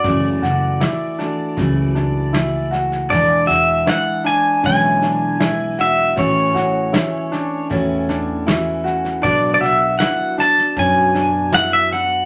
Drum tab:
SD |o-o-o-o-o-o-o-oo|o-o-o-o-o-o-o-o-|o-o-o-o-o-o-o-oo|o-o-o-ooo-o-o-o-|
BD |o-------o-------|o-------o-------|o-------o-------|o-------o-------|